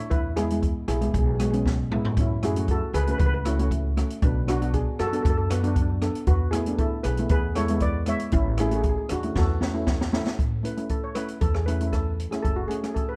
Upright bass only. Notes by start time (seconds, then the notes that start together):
0.11 E2
0.88 B1
1.14 B1
2.17 F#2
2.93 C#2
3.20 C#2
4.22 B1
5.00 F#2
5.25 F#2
6.27 E2
7.04 B1
7.30 E2
8.33 A1
9.10 E2
9.36 E2
10.39 A1
11.42 E2
12.45 F#1